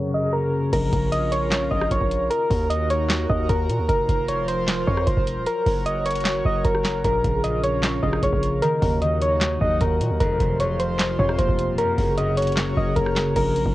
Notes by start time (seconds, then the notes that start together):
Already playing: F#2 C#3 F#3 A#3 C#4 A#4 C#5
0.14 C#3 D#5
0.33 A#3 A#4
0.73 A#1 C#4 F4 A#4, kick, closed hi-hat, crash
0.93 A#1, kick, closed hi-hat
1.12 D#5, closed hi-hat
1.32 C#5, closed hi-hat
1.52 snare, clap, closed hi-hat
1.71 A#1 D#5, kick
1.81 cross-stick
1.91 A#1 C#5, kick, closed hi-hat
2.01 A#1, kick
2.11 closed hi-hat
2.30 D#3 D#4 F#4 A#4, closed hi-hat
2.50 D#2, kick, open hi-hat
2.70 D#5, closed hi-hat
2.90 C#5, closed hi-hat
3.10 snare, clap, closed hi-hat
3.29 D#2 D#5, kick
3.49 D#2 A#4, kick, closed hi-hat
3.69 A#2, closed hi-hat
3.79 D#2
3.88 F1 F3 F4 A#4 C5, kick, closed hi-hat
4.08 F1, kick, closed hi-hat
4.28 C#5, closed hi-hat
4.48 C5, closed hi-hat
4.68 snare, clap, closed hi-hat
4.87 F2 C#5, kick
4.97 cross-stick
5.07 F1 C5, kick, closed hi-hat
5.17 F1, kick
5.27 closed hi-hat
5.37 D#1
5.46 F#3 F#4 A#4 C#5, closed hi-hat
5.66 F#1, kick, open hi-hat
5.86 D#5, closed hi-hat
6.06 C#5, closed hi-hat
6.11 closed hi-hat
6.16 closed hi-hat
6.21 closed hi-hat
6.25 snare, clap, closed hi-hat
6.45 F#1 D#5, kick
6.65 F#1 A#4, kick, closed hi-hat
6.75 cross-stick
6.85 snare, clap, closed hi-hat
7.04 A#1 A#2 C#4 F4 A#4, kick, closed hi-hat
7.24 A#1 C#3, kick, closed hi-hat
7.44 A#2 D#5, closed hi-hat
7.64 C#5, closed hi-hat
7.83 snare, clap, closed hi-hat
8.03 A#1 C#3 D#5, kick
8.13 cross-stick
8.23 A#1 A#3 C#5, kick, closed hi-hat
8.33 A#1, kick
8.43 closed hi-hat
8.62 D#3 D#4 F#4 A#4, closed hi-hat
8.82 D#2 F#3, kick, open hi-hat
9.01 D#3 D#5, closed hi-hat
9.22 C#5, closed hi-hat
9.41 snare, clap, closed hi-hat
9.61 D#2 F#3 D#5, kick
9.81 D#2 D#4 A#4, kick, closed hi-hat
10.00 A#2, closed hi-hat
10.10 D#2
10.20 F1 F2 F3 F4 A#4 C5, kick, closed hi-hat
10.40 F1 C3, kick, closed hi-hat
10.60 F2 C#5, closed hi-hat
10.79 C5, closed hi-hat
10.99 snare, clap, closed hi-hat
11.19 F2 C3 C#5, kick
11.29 cross-stick
11.38 F1 A#3 C5, kick, closed hi-hat
11.49 F1, kick
11.59 closed hi-hat
11.68 D#1
11.78 F#2 F#3 F#4 A#4 C#5, closed hi-hat
11.98 F#1 C#3, kick, open hi-hat
12.18 F#2 D#5, closed hi-hat
12.37 C#5, closed hi-hat
12.42 closed hi-hat
12.47 closed hi-hat
12.52 closed hi-hat
12.57 snare, clap, closed hi-hat
12.77 F#1 C#3 D#5, kick
12.96 F#1 A#3 A#4, kick, closed hi-hat
13.06 cross-stick
13.16 snare, clap, closed hi-hat
13.36 A#1 C#4 F4 A#4, kick, closed hi-hat, crash
13.56 closed hi-hat
13.66 A#1, kick